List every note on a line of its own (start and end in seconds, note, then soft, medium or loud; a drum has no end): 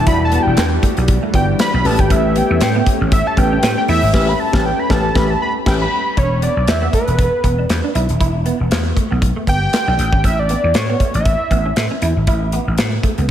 0.00 1.81 E3 medium
0.00 6.13 G3 medium
0.00 1.81 D4 medium
0.00 1.81 F#4 medium
0.07 0.36 E1 loud
0.07 0.54 G3 medium
0.07 0.17 E4 medium
0.07 0.54 E4 medium
0.07 0.55 F#4 medium
0.07 0.55 D5 medium
0.07 0.23 B5 loud
0.07 kick loud
0.07 closed hi-hat loud
0.21 0.44 A5 loud
0.21 muted clean electric guitar stroke soft
0.32 0.42 B3 medium
0.32 closed hi-hat medium
0.42 0.67 G5 medium
0.46 0.55 E1 medium
0.57 0.77 E2 loud
0.57 muted clean electric guitar stroke soft
0.57 snare loud
0.57 clap medium
0.57 closed hi-hat medium
0.83 0.93 A3 medium
0.83 kick medium
0.83 closed hi-hat medium
0.97 1.16 B1 medium
0.97 1.05 B3 medium
0.97 closed hi-hat soft
1.08 muted clean electric guitar stroke soft
1.08 kick loud
1.08 closed hi-hat medium
1.23 1.31 A3 medium
1.33 1.53 G1 loud
1.33 1.70 G3 medium
1.33 1.44 B3 medium
1.33 1.70 E4 medium
1.33 1.70 F#4 medium
1.33 1.71 D5 medium
1.33 1.46 G5 medium
1.33 kick medium
1.33 closed hi-hat medium
1.59 1.87 B5 loud
1.59 snare loud
1.59 clap medium
1.59 closed hi-hat medium
1.74 1.82 B1 loud
1.74 1.82 D4 medium
1.84 1.96 A1 loud
1.84 2.67 A3 medium
1.84 6.13 A3 medium
1.84 2.67 C#4 medium
1.84 6.13 C#4 medium
1.84 2.67 G4 medium
1.84 2.67 B4 loud
1.84 2.02 A5 loud
1.84 muted clean electric guitar stroke soft
1.84 open hi-hat medium
1.99 2.07 G#1 medium
1.99 2.07 C#4 medium
1.99 2.13 G5 loud
1.99 kick loud
1.99 closed hi-hat medium
2.10 2.40 A1 loud
2.10 2.20 C#4 medium
2.10 2.39 E5 loud
2.10 kick loud
2.10 closed hi-hat loud
2.36 2.46 B3 medium
2.36 2.53 G5 medium
2.36 closed hi-hat medium
2.50 2.58 E2 medium
2.50 2.64 E5 medium
2.50 muted clean electric guitar stroke soft
2.61 2.80 A2 medium
2.61 2.87 G5 medium
2.61 muted clean electric guitar stroke soft
2.61 snare loud
2.61 clap medium
2.61 closed hi-hat medium
2.75 2.83 B3 medium
2.87 2.97 A3 medium
2.87 kick medium
2.87 closed hi-hat medium
3.01 3.20 A1 medium
3.12 3.28 E5 medium
3.12 muted clean electric guitar stroke medium
3.12 kick loud
3.12 closed hi-hat medium
3.27 3.40 A5 loud
3.37 3.56 A1 medium
3.37 3.74 A3 medium
3.37 3.48 B3 medium
3.37 3.74 C#4 medium
3.37 3.74 G4 medium
3.37 3.74 B4 medium
3.37 3.77 G5 loud
3.37 kick loud
3.37 closed hi-hat medium
3.52 3.60 C#4 medium
3.63 3.73 A2 loud
3.63 snare loud
3.63 clap medium
3.63 closed hi-hat medium
3.77 3.85 C#4 medium
3.77 3.83 G5 loud
3.88 3.99 E2 loud
3.88 3.98 E4 medium
3.88 4.30 E5 loud
3.88 open hi-hat medium
4.02 4.11 G#1 loud
4.13 4.32 A1 loud
4.13 4.31 A3 loud
4.13 4.31 C#4 loud
4.13 4.31 G4 loud
4.13 4.32 B4 loud
4.13 kick loud
4.13 snare loud
4.13 crash medium
4.29 4.41 B5 loud
4.40 4.67 A5 loud
4.52 4.70 A1 loud
4.52 4.70 A3 loud
4.52 4.70 C#4 loud
4.52 4.70 G4 loud
4.52 4.70 B4 loud
4.52 kick loud
4.52 snare loud
4.65 4.81 G5 medium
4.79 4.92 B5 loud
4.89 5.08 A1 loud
4.89 5.07 A3 loud
4.89 5.07 C#4 loud
4.89 5.08 G4 loud
4.89 5.08 B4 loud
4.89 5.18 A5 loud
4.89 kick loud
4.89 snare loud
5.15 5.33 A1 loud
5.15 5.33 A3 loud
5.15 5.33 C#4 loud
5.15 5.33 G4 loud
5.15 5.33 B4 loud
5.15 5.32 B5 loud
5.15 kick loud
5.15 snare loud
5.30 5.41 A5 medium
5.42 5.53 B5 medium
5.66 5.84 A1 loud
5.66 5.84 A3 loud
5.66 5.84 C#4 loud
5.66 5.84 G4 loud
5.66 5.84 B4 loud
5.66 5.74 G5 medium
5.66 kick loud
5.66 snare loud
5.66 crash medium
5.82 6.15 B5 loud
6.17 6.46 E1 loud
6.17 6.27 D4 medium
6.17 6.41 C#5 loud
6.17 kick loud
6.17 closed hi-hat medium
6.42 6.52 B3 medium
6.42 6.70 D5 medium
6.42 closed hi-hat medium
6.56 6.65 B1 medium
6.56 muted clean electric guitar stroke soft
6.67 6.86 E2 medium
6.67 6.94 E5 loud
6.67 muted clean electric guitar stroke soft
6.67 snare loud
6.67 clap medium
6.67 closed hi-hat medium
6.82 6.90 B3 medium
6.93 7.03 A3 medium
6.93 7.92 B4 loud
6.93 kick medium
6.93 closed hi-hat medium
7.08 7.26 E1 medium
7.08 closed hi-hat soft
7.18 muted clean electric guitar stroke soft
7.18 kick loud
7.18 closed hi-hat medium
7.44 7.63 E1 medium
7.44 7.54 B3 medium
7.44 kick medium
7.44 closed hi-hat medium
7.59 7.66 D4 medium
7.69 7.80 E2 loud
7.69 muted clean electric guitar stroke soft
7.69 snare medium
7.69 clap medium
7.69 closed hi-hat medium
7.84 7.92 D4 medium
7.95 8.06 B1 loud
7.95 8.05 E4 medium
7.95 closed hi-hat medium
8.09 8.18 D#1 medium
8.09 closed hi-hat soft
8.20 8.50 E1 medium
8.20 8.30 E4 medium
8.20 kick loud
8.20 closed hi-hat medium
8.35 muted clean electric guitar stroke soft
8.46 8.56 B3 medium
8.46 closed hi-hat medium
8.60 8.68 E1 medium
8.71 8.90 E2 medium
8.71 muted clean electric guitar stroke soft
8.71 snare loud
8.71 clap medium
8.71 closed hi-hat medium
8.96 9.06 A3 medium
8.96 kick medium
8.96 closed hi-hat medium
9.11 9.30 B1 medium
9.11 9.19 B3 medium
9.22 muted clean electric guitar stroke soft
9.22 kick loud
9.22 closed hi-hat medium
9.36 9.44 A3 medium
9.47 9.66 G1 medium
9.47 9.57 B3 medium
9.47 10.21 G5 loud
9.47 kick medium
9.47 closed hi-hat medium
9.73 snare loud
9.73 clap medium
9.73 closed hi-hat medium
9.87 9.96 B1 medium
9.87 9.95 D4 medium
9.99 10.09 A1 medium
9.99 muted clean electric guitar stroke soft
9.99 closed hi-hat medium
10.13 10.21 G#1 medium
10.13 10.21 C#4 medium
10.13 kick loud
10.24 10.53 A1 loud
10.24 10.34 C#4 medium
10.24 10.41 E5 loud
10.24 kick loud
10.24 closed hi-hat medium
10.39 10.77 D5 loud
10.49 10.60 B3 medium
10.49 closed hi-hat medium
10.64 10.72 E2 medium
10.64 muted clean electric guitar stroke soft
10.74 11.15 C#5 medium
10.74 muted clean electric guitar stroke soft
10.74 snare loud
10.74 clap medium
10.74 closed hi-hat medium
10.89 10.97 B3 medium
11.00 11.10 A3 medium
11.00 kick medium
11.00 closed hi-hat medium
11.14 11.33 A1 medium
11.14 11.98 E5 medium
11.14 closed hi-hat soft
11.25 muted clean electric guitar stroke soft
11.25 kick loud
11.25 closed hi-hat medium
11.51 11.70 A1 medium
11.51 11.61 B3 medium
11.51 kick medium
11.51 closed hi-hat medium
11.65 11.73 C#4 medium
11.76 11.87 A2 loud
11.76 muted clean electric guitar stroke soft
11.76 snare loud
11.76 clap medium
11.76 closed hi-hat medium
11.91 11.99 C#4 medium
12.02 12.12 E2 medium
12.02 12.12 E4 medium
12.02 closed hi-hat medium
12.16 12.24 G#1 medium
12.27 12.57 A1 medium
12.27 12.37 E4 medium
12.27 kick loud
12.27 closed hi-hat medium
12.42 muted clean electric guitar stroke soft
12.52 12.63 B3 medium
12.52 closed hi-hat medium
12.67 12.75 A1 medium
12.78 12.97 A2 medium
12.78 muted clean electric guitar stroke soft
12.78 snare loud
12.78 clap medium
12.78 closed hi-hat medium
13.03 13.14 A3 medium
13.03 kick medium
13.03 closed hi-hat medium
13.18 13.31 C#2 medium
13.18 13.26 B3 medium
13.18 closed hi-hat soft